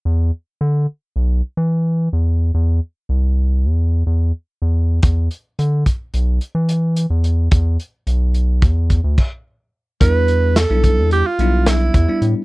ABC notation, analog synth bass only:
X:1
M:9/8
L:1/16
Q:3/8=72
K:Ephr
V:1 name="Analog synth bass" clef=bass
E,,2 z2 D,2 z2 B,,,2 z E,4 E,,3 | E,,2 z2 C,,4 E,,3 E,,2 z2 E,,3 | E,,2 z2 D,2 z2 B,,,2 z E,4 E,,3 | E,,2 z2 B,,,4 E,,3 D,, z6 |
E,,4- E,, B,,,2 E,,2 z B,,,4 E,, z A,, z |]